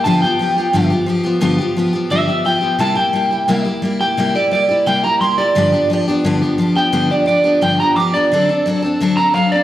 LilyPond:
<<
  \new Staff \with { instrumentName = "Clean electric guitar" } { \time 4/4 \key g \mixolydian \tempo 4 = 174 a''8 g''2 r4. | r2 e''4 g''4 | a''8 g''2 r4 g''8~ | g''8 d''8 d''4 g''8 bes''8 c'''8 d''8~ |
d''4. r2 g''8~ | g''8 d''8 d''4 g''8 bes''8 d'''8 d''8~ | d''4. r4 bes''8 f''8 d''8 | }
  \new Staff \with { instrumentName = "Steel-string acoustic guitar" } { \time 4/4 \key g \mixolydian <g, d f b f' g'>8 <f b f' g'>8 <f b f' g'>8 <f b f' g'>8 <g, d f b f' g'>8 <f b f' g'>8 <f b f' g'>8 <f b f' g'>8 | <g, d f b f' g'>8 <f b f' g'>8 <f b f' g'>8 <f b f' g'>8 <g, d f b f' g'>8 <f b f' g'>8 <f b f' g'>8 <f b f' g'>8 | <c g bes e' g'>8 <bes e' g'>8 <g bes e' g'>8 <bes e' g'>8 <c g bes e' g'>8 <bes e' g'>8 <g bes e' g'>8 <bes e' g'>8 | <c g bes e' g'>8 <bes e' g'>8 <g bes e' g'>8 <bes e' g'>8 <c g bes e' g'>8 <bes e' g'>8 <g bes e' g'>8 <bes e' g'>8 |
<g, d f b d' g'>8 <f b d' g'>8 <f b d' g'>8 <f b d' g'>8 <g, d f b d' g'>8 <f b d' g'>8 <f b d' g'>8 <f b d' g'>8 | <g, d f b d' g'>8 <f b d' g'>8 <f b d' g'>8 <f b d' g'>8 <g, d f b d' g'>8 <f b d' g'>8 <f b d' g'>8 <f b d' g'>8 | <d fis c' d' a'>8 <c' d' a'>8 <fis c' d' a'>8 <c' d' a'>8 <d fis c' d' a'>8 <c' d' a'>8 <fis c' d' a'>8 <c' d' a'>8 | }
>>